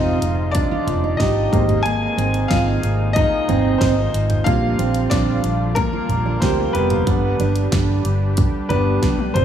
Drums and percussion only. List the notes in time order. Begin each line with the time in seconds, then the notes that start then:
0.22 closed hi-hat
0.55 kick, closed hi-hat
0.87 closed hi-hat, floor tom
1.20 kick, snare, closed hi-hat
1.53 kick, closed hi-hat
1.69 closed hi-hat, floor tom
1.86 closed hi-hat
2.19 closed hi-hat
2.34 closed hi-hat
2.51 kick, snare, closed hi-hat
2.83 closed hi-hat
3.16 kick, closed hi-hat
3.49 closed hi-hat, floor tom
3.81 kick, snare, closed hi-hat
4.14 closed hi-hat
4.30 closed hi-hat, floor tom
4.46 kick, closed hi-hat
4.79 closed hi-hat
4.95 closed hi-hat
5.11 kick, snare, closed hi-hat
5.44 closed hi-hat
5.76 kick, closed hi-hat
6.09 closed hi-hat, floor tom
6.42 kick, snare, closed hi-hat
6.75 closed hi-hat
6.90 closed hi-hat, floor tom
7.07 kick, closed hi-hat
7.40 closed hi-hat
7.56 closed hi-hat
7.72 kick, snare, closed hi-hat
8.05 closed hi-hat
8.37 kick, closed hi-hat
8.70 closed hi-hat, floor tom
9.03 kick, snare, closed hi-hat
9.19 high tom
9.35 closed hi-hat, mid tom